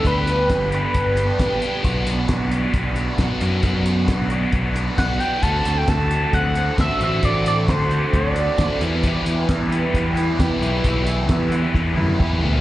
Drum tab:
HH |x-x-x-x-x-x-x-x-|x-x-x-x-x-x-x-x-|x-x-x-x-x-x-x-x-|x-x-x-x-x-x-x-x-|
SD |----o-------o---|----o-------o---|----o-------o---|----o-------o---|
T1 |----------------|----------------|----------------|----------------|
T2 |----------------|----------------|----------------|----------------|
FT |----------------|----------------|----------------|----------------|
BD |o---o---o---o---|o---o---o---o---|o---o---o---o---|o---o---o---o---|

HH |x-x-x-x-x-x-x-x-|x-x-x-x-x-x-x-x-|x-x-x-x---------|
SD |----o-------o---|----o-------o---|----o---o-------|
T1 |----------------|----------------|----------oo----|
T2 |----------------|----------------|------------o---|
FT |----------------|----------------|--------------oo|
BD |o---o---o---o---|o---o---o---o---|o---o---o---o---|